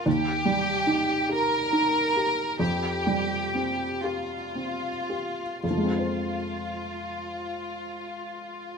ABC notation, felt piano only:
X:1
M:6/8
L:1/8
Q:3/8=40
K:Fm
V:1 name="Felt piano"
E,, G, E G E G | F,, G, C G C G | [F,,F,A,CFc]6 |]